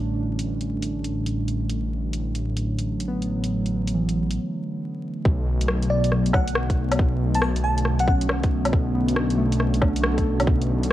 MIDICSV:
0, 0, Header, 1, 6, 480
1, 0, Start_track
1, 0, Key_signature, 2, "minor"
1, 0, Tempo, 434783
1, 40, Time_signature, 4, 2, 24, 8
1, 12065, End_track
2, 0, Start_track
2, 0, Title_t, "FM electric piano"
2, 0, Program_c, 0, 5
2, 6514, Note_on_c, 0, 74, 92
2, 6773, Note_off_c, 0, 74, 0
2, 7000, Note_on_c, 0, 78, 89
2, 7256, Note_off_c, 0, 78, 0
2, 8115, Note_on_c, 0, 81, 92
2, 8169, Note_off_c, 0, 81, 0
2, 8204, Note_on_c, 0, 81, 78
2, 8302, Note_off_c, 0, 81, 0
2, 8434, Note_on_c, 0, 81, 90
2, 8693, Note_off_c, 0, 81, 0
2, 8832, Note_on_c, 0, 78, 93
2, 8888, Note_off_c, 0, 78, 0
2, 8920, Note_on_c, 0, 78, 76
2, 9020, Note_off_c, 0, 78, 0
2, 12065, End_track
3, 0, Start_track
3, 0, Title_t, "Synth keys"
3, 0, Program_c, 1, 88
3, 0, Control_c, 1, 64, 127
3, 0, Note_on_c, 1, 61, 69
3, 0, Note_on_c, 1, 62, 64
3, 838, Note_off_c, 1, 62, 0
3, 3397, Note_on_c, 1, 59, 68
3, 4352, Note_on_c, 1, 52, 51
3, 4438, Note_off_c, 1, 59, 0
3, 4802, Note_off_c, 1, 52, 0
3, 5813, Control_c, 1, 64, 0
3, 5817, Note_off_c, 1, 61, 0
3, 6021, Control_c, 1, 64, 127
3, 6283, Note_on_c, 1, 54, 63
3, 7320, Note_off_c, 1, 54, 0
3, 8920, Note_on_c, 1, 61, 72
3, 9876, Note_on_c, 1, 59, 69
3, 9959, Note_off_c, 1, 61, 0
3, 10101, Note_on_c, 1, 62, 54
3, 10353, Note_on_c, 1, 57, 82
3, 10576, Note_on_c, 1, 61, 56
3, 10824, Note_off_c, 1, 62, 0
3, 10838, Note_on_c, 1, 62, 67
3, 10917, Note_off_c, 1, 59, 0
3, 11056, Note_on_c, 1, 66, 57
3, 11191, Note_on_c, 1, 69, 58
3, 11395, Note_off_c, 1, 57, 0
3, 11528, Note_off_c, 1, 61, 0
3, 11878, Note_off_c, 1, 62, 0
3, 12008, Note_off_c, 1, 66, 0
3, 12065, Note_off_c, 1, 69, 0
3, 12065, End_track
4, 0, Start_track
4, 0, Title_t, "Ambient pad"
4, 0, Program_c, 2, 92
4, 0, Note_on_c, 2, 50, 73
4, 0, Note_on_c, 2, 55, 68
4, 0, Note_on_c, 2, 57, 70
4, 1923, Note_off_c, 2, 55, 0
4, 1957, Note_on_c, 2, 54, 70
4, 5753, Note_off_c, 2, 50, 0
4, 5753, Note_off_c, 2, 57, 0
4, 5760, Note_off_c, 2, 54, 0
4, 5793, Note_on_c, 2, 57, 73
4, 5796, Note_on_c, 2, 50, 80
4, 5797, Note_on_c, 2, 59, 89
4, 12065, Note_off_c, 2, 50, 0
4, 12065, Note_off_c, 2, 57, 0
4, 12065, Note_off_c, 2, 59, 0
4, 12065, End_track
5, 0, Start_track
5, 0, Title_t, "Detuned saw bass"
5, 0, Program_c, 3, 39
5, 0, Note_on_c, 3, 33, 86
5, 4840, Note_off_c, 3, 33, 0
5, 5800, Note_on_c, 3, 35, 92
5, 12065, Note_off_c, 3, 35, 0
5, 12065, End_track
6, 0, Start_track
6, 0, Title_t, "Drums"
6, 431, Note_on_c, 9, 42, 48
6, 541, Note_off_c, 9, 42, 0
6, 671, Note_on_c, 9, 42, 39
6, 782, Note_off_c, 9, 42, 0
6, 910, Note_on_c, 9, 42, 49
6, 1020, Note_off_c, 9, 42, 0
6, 1152, Note_on_c, 9, 42, 39
6, 1262, Note_off_c, 9, 42, 0
6, 1393, Note_on_c, 9, 42, 45
6, 1504, Note_off_c, 9, 42, 0
6, 1633, Note_on_c, 9, 42, 26
6, 1744, Note_off_c, 9, 42, 0
6, 1872, Note_on_c, 9, 42, 47
6, 1982, Note_off_c, 9, 42, 0
6, 2355, Note_on_c, 9, 42, 48
6, 2465, Note_off_c, 9, 42, 0
6, 2595, Note_on_c, 9, 42, 39
6, 2706, Note_off_c, 9, 42, 0
6, 2834, Note_on_c, 9, 42, 50
6, 2944, Note_off_c, 9, 42, 0
6, 3075, Note_on_c, 9, 42, 39
6, 3185, Note_off_c, 9, 42, 0
6, 3312, Note_on_c, 9, 42, 48
6, 3422, Note_off_c, 9, 42, 0
6, 3554, Note_on_c, 9, 42, 27
6, 3665, Note_off_c, 9, 42, 0
6, 3794, Note_on_c, 9, 42, 50
6, 3905, Note_off_c, 9, 42, 0
6, 4039, Note_on_c, 9, 42, 28
6, 4149, Note_off_c, 9, 42, 0
6, 4278, Note_on_c, 9, 42, 51
6, 4388, Note_off_c, 9, 42, 0
6, 4514, Note_on_c, 9, 42, 41
6, 4624, Note_off_c, 9, 42, 0
6, 4754, Note_on_c, 9, 42, 52
6, 4865, Note_off_c, 9, 42, 0
6, 5797, Note_on_c, 9, 36, 115
6, 5908, Note_off_c, 9, 36, 0
6, 6194, Note_on_c, 9, 42, 58
6, 6274, Note_on_c, 9, 37, 105
6, 6305, Note_off_c, 9, 42, 0
6, 6385, Note_off_c, 9, 37, 0
6, 6431, Note_on_c, 9, 42, 46
6, 6542, Note_off_c, 9, 42, 0
6, 6669, Note_on_c, 9, 42, 59
6, 6755, Note_on_c, 9, 37, 61
6, 6780, Note_off_c, 9, 42, 0
6, 6865, Note_off_c, 9, 37, 0
6, 6910, Note_on_c, 9, 42, 46
6, 6992, Note_on_c, 9, 77, 56
6, 6999, Note_on_c, 9, 36, 108
6, 7020, Note_off_c, 9, 42, 0
6, 7102, Note_off_c, 9, 77, 0
6, 7109, Note_off_c, 9, 36, 0
6, 7148, Note_on_c, 9, 42, 58
6, 7234, Note_on_c, 9, 37, 103
6, 7259, Note_off_c, 9, 42, 0
6, 7344, Note_off_c, 9, 37, 0
6, 7394, Note_on_c, 9, 36, 63
6, 7395, Note_on_c, 9, 42, 32
6, 7505, Note_off_c, 9, 36, 0
6, 7505, Note_off_c, 9, 42, 0
6, 7634, Note_on_c, 9, 42, 60
6, 7634, Note_on_c, 9, 77, 68
6, 7718, Note_on_c, 9, 36, 124
6, 7745, Note_off_c, 9, 42, 0
6, 7745, Note_off_c, 9, 77, 0
6, 7828, Note_off_c, 9, 36, 0
6, 8109, Note_on_c, 9, 42, 59
6, 8189, Note_on_c, 9, 37, 110
6, 8220, Note_off_c, 9, 42, 0
6, 8300, Note_off_c, 9, 37, 0
6, 8348, Note_on_c, 9, 42, 48
6, 8458, Note_off_c, 9, 42, 0
6, 8587, Note_on_c, 9, 42, 60
6, 8668, Note_on_c, 9, 37, 64
6, 8697, Note_off_c, 9, 42, 0
6, 8778, Note_off_c, 9, 37, 0
6, 8825, Note_on_c, 9, 42, 47
6, 8916, Note_on_c, 9, 36, 111
6, 8935, Note_off_c, 9, 42, 0
6, 9026, Note_off_c, 9, 36, 0
6, 9066, Note_on_c, 9, 42, 58
6, 9153, Note_on_c, 9, 37, 108
6, 9153, Note_on_c, 9, 77, 36
6, 9176, Note_off_c, 9, 42, 0
6, 9263, Note_off_c, 9, 37, 0
6, 9263, Note_off_c, 9, 77, 0
6, 9310, Note_on_c, 9, 42, 33
6, 9313, Note_on_c, 9, 36, 110
6, 9421, Note_off_c, 9, 42, 0
6, 9423, Note_off_c, 9, 36, 0
6, 9551, Note_on_c, 9, 42, 58
6, 9551, Note_on_c, 9, 77, 65
6, 9637, Note_on_c, 9, 36, 124
6, 9661, Note_off_c, 9, 42, 0
6, 9661, Note_off_c, 9, 77, 0
6, 9748, Note_off_c, 9, 36, 0
6, 10030, Note_on_c, 9, 42, 57
6, 10116, Note_on_c, 9, 37, 108
6, 10140, Note_off_c, 9, 42, 0
6, 10227, Note_off_c, 9, 37, 0
6, 10271, Note_on_c, 9, 42, 48
6, 10382, Note_off_c, 9, 42, 0
6, 10513, Note_on_c, 9, 42, 59
6, 10598, Note_on_c, 9, 37, 65
6, 10623, Note_off_c, 9, 42, 0
6, 10709, Note_off_c, 9, 37, 0
6, 10753, Note_on_c, 9, 42, 46
6, 10837, Note_on_c, 9, 77, 52
6, 10839, Note_on_c, 9, 36, 112
6, 10863, Note_off_c, 9, 42, 0
6, 10947, Note_off_c, 9, 77, 0
6, 10949, Note_off_c, 9, 36, 0
6, 10996, Note_on_c, 9, 42, 56
6, 11078, Note_on_c, 9, 37, 112
6, 11107, Note_off_c, 9, 42, 0
6, 11188, Note_off_c, 9, 37, 0
6, 11236, Note_on_c, 9, 36, 68
6, 11236, Note_on_c, 9, 42, 32
6, 11347, Note_off_c, 9, 36, 0
6, 11347, Note_off_c, 9, 42, 0
6, 11479, Note_on_c, 9, 42, 57
6, 11479, Note_on_c, 9, 77, 62
6, 11560, Note_on_c, 9, 36, 123
6, 11589, Note_off_c, 9, 42, 0
6, 11589, Note_off_c, 9, 77, 0
6, 11670, Note_off_c, 9, 36, 0
6, 11719, Note_on_c, 9, 42, 31
6, 11829, Note_off_c, 9, 42, 0
6, 11960, Note_on_c, 9, 42, 55
6, 12065, Note_off_c, 9, 42, 0
6, 12065, End_track
0, 0, End_of_file